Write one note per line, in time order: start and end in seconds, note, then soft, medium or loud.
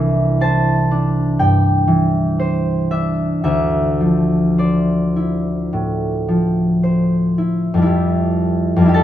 0.00 3.28 C2 medium
0.00 1.86 E3 soft
0.00 0.90 D4 soft
0.00 1.28 D5 medium
0.00 2.90 E5 medium
0.41 2.38 C5 soft
0.41 2.08 A5 medium
0.91 2.90 D4 soft
1.39 3.50 G2 soft
1.39 5.29 G5 medium
1.88 3.49 E3 soft
2.40 4.57 C5 soft
2.91 6.81 D4 soft
2.91 3.42 E5 medium
3.44 7.34 D2 soft
3.44 7.34 E5 medium
4.00 6.27 F3 soft
4.58 6.82 C5 soft
4.58 7.94 D5 soft
5.16 7.37 E4 soft
5.73 7.94 A2 soft
6.28 9.03 F3 soft
6.83 9.03 C5 soft
7.38 7.81 E4 soft
7.74 8.75 F2 soft
7.74 8.80 G3 soft
7.82 8.84 E4 soft
7.86 8.88 G4 soft
8.76 9.03 F2 medium
8.81 9.03 G3 soft
8.85 9.03 E4 soft
8.85 9.03 G4 soft
8.94 9.03 A4 medium
8.94 9.03 A5 medium